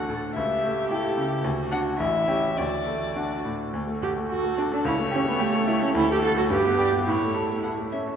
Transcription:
0.00 0.33 D2 soft
0.00 0.39 A3 soft
0.00 0.38 D4 soft
0.00 0.38 A4 soft
0.00 0.35 F#5 soft
0.08 0.36 A2 soft
0.08 0.16 A4 soft
0.36 1.42 C#2 soft
0.36 1.46 G4 medium
0.36 0.89 E5 medium
0.64 1.07 A3 soft
0.91 1.15 E4 soft
0.91 1.15 G4 soft
0.91 1.44 A4 medium
1.17 1.45 C#3 soft
1.44 1.98 D2 soft
1.44 2.01 F#4 medium
1.72 1.97 D4 soft
1.72 1.97 F#4 soft
1.72 1.80 F#5 medium
1.99 2.56 A1 medium
1.99 2.56 E4 medium
1.99 2.58 E5 medium
2.28 2.55 C#4 soft
2.28 2.55 G4 soft
2.56 3.71 D2 soft
2.56 3.43 F#4 soft
2.56 3.45 D5 medium
2.86 3.33 A3 soft
3.16 3.42 D4 soft
3.16 3.43 F#4 soft
3.45 3.74 A2 soft
3.73 4.82 D2 soft
3.87 4.10 A3 soft
4.02 4.25 F#4 soft
4.02 4.11 G4 medium
4.17 4.39 A3 soft
4.30 4.53 F#4 soft
4.30 4.71 F#4 medium
4.30 4.87 A4 medium
4.44 4.66 A3 soft
4.58 4.80 D4 soft
4.72 4.78 D4 medium
4.72 4.86 A4 soft
4.85 5.92 C#2 medium
4.85 4.94 E4 medium
4.85 5.95 C#5 medium
4.98 5.20 A3 soft
5.11 5.20 C#4 medium
5.11 5.34 G4 soft
5.25 5.48 A3 soft
5.25 5.42 B3 medium
5.39 5.83 A3 medium
5.39 5.62 G4 medium
5.53 5.76 A3 medium
5.68 5.90 E4 medium
5.80 5.95 C#4 medium
5.80 5.95 A4 medium
5.95 6.49 D2 medium
5.95 6.09 E4 medium
5.95 6.49 A4 medium
6.09 6.31 A3 soft
6.09 6.17 G4 medium
6.22 6.45 F#4 soft
6.22 6.36 A4 medium
6.37 6.51 A3 soft
6.37 6.43 F#4 medium
6.50 7.05 G2 medium
6.50 7.06 G4 medium
6.50 6.78 B4 medium
6.64 6.87 B3 soft
6.78 7.01 G4 soft
6.78 6.87 D5 medium
6.92 7.07 B3 soft
7.07 8.16 A2 soft
7.07 7.63 E4 medium
7.07 7.57 C#5 soft
7.21 7.44 A3 soft
7.35 7.58 A4 soft
7.49 7.73 A3 soft
7.63 7.87 A4 soft
7.63 7.71 F#5 soft
7.78 8.01 A3 soft
7.92 8.15 C#4 soft
7.92 8.00 E5 soft
8.08 8.16 A4 soft

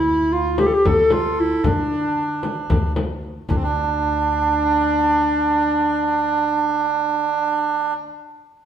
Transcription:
0.00 0.69 D2 medium
0.00 0.34 E4 medium
0.06 0.33 E4 medium
0.32 0.59 F4 medium
0.32 0.61 F4 medium
0.58 0.86 G4 medium
0.58 0.68 G4 medium
0.58 darbuka tek medium
0.58 frame drum medium
0.67 0.76 A4 medium
0.74 0.89 G4 medium
0.85 1.52 D2 medium
0.85 1.67 A4 medium
0.85 1.14 A4 loud
0.85 darbuka dum medium
0.85 frame drum medium
1.10 1.42 F4 medium
1.10 darbuka tek medium
1.10 frame drum medium
1.40 1.66 E4 medium
1.64 2.53 D3 medium
1.64 2.93 D4 medium
1.64 2.97 D4 medium
1.64 frame drum medium
1.64 darbuka dum medium
2.18 darbuka ka soft
2.43 darbuka tek medium
2.43 frame drum medium
2.70 3.37 D2 medium
2.70 frame drum medium
2.70 darbuka dum medium
2.85 darbuka ka soft
2.96 darbuka tek medium
2.96 frame drum medium
3.24 darbuka ka soft
3.49 8.08 D2 medium
3.49 3.56 D4 medium
3.49 7.94 D4 medium
3.49 frame drum medium
3.49 darbuka dum medium
3.56 3.63 C4 medium
3.63 7.94 D4 medium

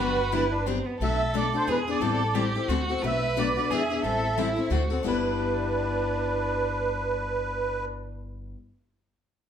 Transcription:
0.00 0.79 G1 medium
0.00 0.19 D3 medium
0.00 0.19 F#3 medium
0.00 0.19 B3 medium
0.00 0.19 D4 medium
0.00 0.35 F#4 medium
0.00 0.19 G4 medium
0.00 0.64 B4 medium
0.32 0.43 D3 medium
0.32 0.43 F#3 medium
0.32 0.43 B3 medium
0.32 0.43 D4 medium
0.32 0.53 E4 medium
0.32 0.44 G4 medium
0.52 0.68 D4 medium
0.66 0.77 D3 medium
0.66 0.77 F#3 medium
0.66 0.77 B3 medium
0.66 0.88 C4 medium
0.66 0.78 D4 medium
0.66 0.78 G4 medium
0.86 1.00 B3 medium
1.00 1.54 B1 medium
1.00 1.21 B2 medium
1.00 1.21 F#3 medium
1.00 1.21 A3 medium
1.00 1.21 D4 medium
1.00 1.21 F#4 medium
1.00 1.69 A4 medium
1.00 1.36 E5 loud
1.34 1.45 B2 medium
1.34 1.45 F#3 medium
1.34 1.45 A3 medium
1.34 1.45 D4 medium
1.34 1.45 F#4 medium
1.34 1.56 D5 medium
1.53 1.67 A3 soft
1.53 1.67 D4 soft
1.53 1.67 F#4 medium
1.53 1.69 C5 medium
1.67 1.94 E2 medium
1.67 1.78 E3 medium
1.67 1.78 B3 medium
1.67 1.79 D4 medium
1.67 2.02 G#4 medium
1.67 1.79 G#4 medium
1.67 1.79 B4 medium
1.88 2.01 B3 soft
1.88 2.01 D4 soft
1.88 2.01 G#4 medium
1.88 2.52 D5 medium
2.00 2.55 A1 medium
2.00 2.21 E3 medium
2.00 2.22 G3 medium
2.00 2.22 C4 medium
2.00 2.22 E4 medium
2.00 2.36 A4 medium
2.00 2.22 A4 medium
2.35 2.46 E3 medium
2.35 2.46 G3 medium
2.35 2.46 C4 medium
2.35 2.46 E4 medium
2.35 2.70 G4 medium
2.35 2.46 A4 medium
2.55 2.68 C4 soft
2.55 2.69 E4 soft
2.55 2.68 A4 medium
2.68 2.96 D2 medium
2.68 2.80 D3 medium
2.68 2.80 A3 medium
2.68 2.80 C4 medium
2.68 3.04 F#4 medium
2.68 2.80 F#4 medium
2.68 2.80 A4 medium
2.89 3.03 C4 soft
2.89 3.03 F#4 soft
2.89 3.02 A4 medium
3.03 3.57 B1 medium
3.03 3.23 B2 medium
3.03 3.23 F#3 medium
3.03 3.24 A3 medium
3.03 3.24 D4 medium
3.03 3.24 F#4 medium
3.03 3.72 B4 loud
3.03 3.36 E5 medium
3.37 3.47 B2 medium
3.37 3.48 F#3 medium
3.37 3.48 A3 medium
3.37 3.48 D4 medium
3.37 3.48 F#4 medium
3.37 3.73 D5 medium
3.57 3.71 A3 soft
3.57 3.70 D4 soft
3.57 3.70 F#4 soft
3.70 3.97 E2 medium
3.70 3.81 E3 medium
3.70 3.81 B3 medium
3.70 3.82 D4 medium
3.70 4.04 G#4 medium
3.70 3.82 G#4 medium
3.70 4.69 E5 medium
3.90 4.04 B3 soft
3.90 4.04 D4 soft
3.90 4.03 G#4 medium
4.03 4.58 A1 medium
4.03 4.24 E3 medium
4.03 4.24 G3 medium
4.03 4.24 C4 medium
4.03 4.24 E4 medium
4.03 4.40 A4 medium
4.03 4.25 A4 medium
4.38 4.48 E3 medium
4.38 4.48 G3 medium
4.38 4.49 C4 medium
4.38 4.49 E4 medium
4.38 4.74 E4 medium
4.38 4.49 A4 medium
4.57 4.70 C4 soft
4.57 4.71 E4 soft
4.57 4.70 A4 soft
4.70 4.98 D2 medium
4.70 4.82 D3 medium
4.70 4.82 A3 medium
4.70 4.82 C4 medium
4.70 4.82 F#4 medium
4.70 5.06 F#4 medium
4.70 4.82 A4 medium
4.90 5.04 C4 soft
4.90 5.04 F#4 soft
4.90 5.04 A4 medium
5.03 8.54 G1 medium
5.03 8.57 G3 medium
5.03 8.57 B3 medium
5.03 7.85 D4 medium
5.03 8.58 E4 medium
5.03 8.59 G4 medium
5.07 7.85 B4 medium

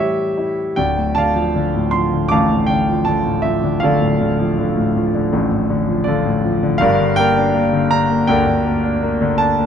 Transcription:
0.00 0.73 A2 medium
0.00 0.74 E3 soft
0.00 0.74 G3 soft
0.00 0.74 G4 medium
0.00 0.79 C#5 medium
0.00 0.80 E5 medium
0.38 0.76 E4 soft
0.76 3.79 D1 medium
0.76 3.79 D2 medium
0.76 1.16 D5 medium
0.76 1.13 G5 medium
0.97 1.73 A2 soft
1.15 1.54 D3 soft
1.15 2.66 D5 medium
1.15 2.30 F5 medium
1.15 1.95 A5 medium
1.35 1.92 F3 soft
1.55 2.12 D3 medium
1.75 2.30 A2 soft
1.91 2.88 F3 soft
1.91 2.27 C6 medium
2.13 2.68 D3 soft
2.29 5.29 A1 medium
2.29 2.50 A2 medium
2.29 3.78 F5 medium
2.29 3.03 A5 medium
2.29 2.69 D6 medium
2.51 3.25 A2 soft
2.66 3.06 D3 soft
2.66 3.07 G5 medium
2.89 3.44 F3 soft
3.05 3.62 D3 medium
3.05 3.45 A5 medium
3.26 4.00 A2 medium
3.42 4.37 F3 soft
3.42 3.82 E5 medium
3.64 4.19 D3 medium
3.80 6.78 D1 medium
3.80 6.78 D2 medium
3.80 6.02 F5 medium
3.84 6.04 A4 medium
3.84 6.02 D5 medium
4.01 4.76 A2 soft
4.20 4.57 D3 soft
4.39 4.94 F3 soft
4.58 5.13 D3 medium
4.77 5.31 A2 soft
4.96 5.87 F3 medium
5.14 5.69 D3 soft
5.33 6.78 A1 medium
5.33 5.50 A2 medium
5.51 6.24 A2 soft
5.70 6.06 D3 medium
5.88 6.43 F3 medium
6.04 6.61 D3 medium
6.04 6.78 A4 soft
6.04 6.80 D5 medium
6.08 6.78 F4 medium
6.26 6.80 A2 medium
6.44 6.81 F3 medium
6.63 6.81 D3 medium
6.78 9.66 G1 medium
6.78 9.66 G2 medium
6.78 7.18 D5 medium
6.78 7.14 F5 loud
6.82 7.18 A#4 medium
7.00 7.71 D3 soft
7.16 7.53 A#3 medium
7.16 8.30 A#4 medium
7.16 8.29 D5 medium
7.16 7.93 G5 loud
7.37 7.90 D4 medium
7.55 8.08 A#3 medium
7.73 8.27 D3 medium
7.91 8.82 D4 medium
7.91 8.26 A#5 loud
8.10 8.64 A#3 soft
8.27 9.66 D2 medium
8.27 8.45 D3 medium
8.27 9.66 A#4 medium
8.27 9.66 D5 medium
8.27 9.43 G5 medium
8.47 9.20 D3 medium
8.66 9.01 A#3 medium
8.84 9.38 D4 medium
9.02 9.57 A#3 medium
9.21 9.66 D3 medium
9.38 9.66 D4 soft
9.38 9.66 A5 loud
9.58 9.66 A#3 medium

